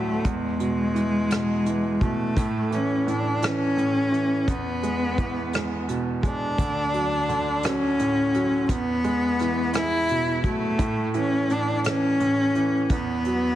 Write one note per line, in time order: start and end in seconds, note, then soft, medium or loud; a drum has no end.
0.00 0.21 D2 medium
0.00 0.23 A2 soft
0.00 0.21 D3 soft
0.00 0.28 F#3 soft
0.00 0.28 A3 medium
0.25 2.32 E2 medium
0.25 2.06 G#3 medium
0.25 kick medium
0.25 closed hi-hat medium
0.60 1.28 B2 soft
0.60 closed hi-hat soft
0.95 1.64 E3 soft
0.95 closed hi-hat soft
1.30 1.99 B2 soft
1.30 cross-stick medium
1.30 closed hi-hat medium
1.66 2.34 E3 soft
1.66 closed hi-hat soft
2.01 2.35 B2 medium
2.01 2.75 A3 medium
2.01 kick medium
2.01 closed hi-hat soft
2.37 3.05 A2 medium
2.37 kick medium
2.37 closed hi-hat medium
2.71 3.41 E3 medium
2.71 3.10 C#4 medium
2.71 closed hi-hat soft
3.07 3.75 A2 soft
3.07 3.46 D4 medium
3.07 closed hi-hat soft
3.42 4.10 E3 soft
3.42 4.52 C#4 medium
3.42 cross-stick medium
3.42 closed hi-hat medium
3.77 4.45 A2 soft
3.77 closed hi-hat soft
4.12 4.46 E3 soft
4.12 closed hi-hat soft
4.48 6.54 E2 medium
4.48 5.90 B3 medium
4.48 kick medium
4.48 closed hi-hat medium
4.83 5.52 G#3 soft
4.83 closed hi-hat soft
5.18 6.55 E3 soft
5.18 kick medium
5.18 closed hi-hat soft
5.53 6.21 G#3 soft
5.53 cross-stick medium
5.53 closed hi-hat medium
5.88 6.56 B2 soft
5.88 closed hi-hat medium
6.23 6.57 G#3 soft
6.23 7.66 D4 medium
6.23 kick medium
6.23 closed hi-hat soft
6.58 8.65 D2 medium
6.58 kick medium
6.58 closed hi-hat medium
6.93 7.63 F#3 medium
6.93 closed hi-hat soft
7.29 8.65 D3 soft
7.29 closed hi-hat soft
7.63 8.33 F#3 soft
7.63 8.72 C#4 medium
7.63 cross-stick medium
7.63 closed hi-hat medium
7.99 8.68 A2 soft
7.99 closed hi-hat medium
8.34 8.68 F#3 medium
8.34 closed hi-hat soft
8.69 10.76 E2 medium
8.69 9.75 B3 medium
8.69 kick medium
8.69 closed hi-hat medium
9.04 10.41 G#3 medium
9.04 closed hi-hat soft
9.39 10.77 E3 soft
9.39 cross-stick soft
9.39 closed hi-hat soft
9.73 10.42 E4 loud
9.73 10.77 G#4 soft
9.73 cross-stick medium
9.73 closed hi-hat medium
10.09 10.78 B2 soft
10.09 closed hi-hat medium
10.44 10.79 F#3 medium
10.44 11.12 A3 medium
10.44 kick medium
10.44 closed hi-hat soft
10.79 11.49 A2 medium
10.79 kick loud
10.79 closed hi-hat medium
11.14 11.84 E3 medium
11.14 11.53 C#4 medium
11.14 closed hi-hat soft
11.50 12.19 A2 medium
11.50 11.86 D4 medium
11.50 closed hi-hat soft
11.84 12.54 E3 soft
11.84 12.88 C#4 loud
11.84 cross-stick medium
11.84 closed hi-hat medium
12.20 12.88 A2 soft
12.20 closed hi-hat soft
12.55 12.90 E3 medium
12.55 closed hi-hat soft
12.90 13.55 E2 medium
12.90 13.55 B3 medium
12.90 kick medium
12.90 closed hi-hat medium
13.24 13.55 F#3 soft
13.24 closed hi-hat soft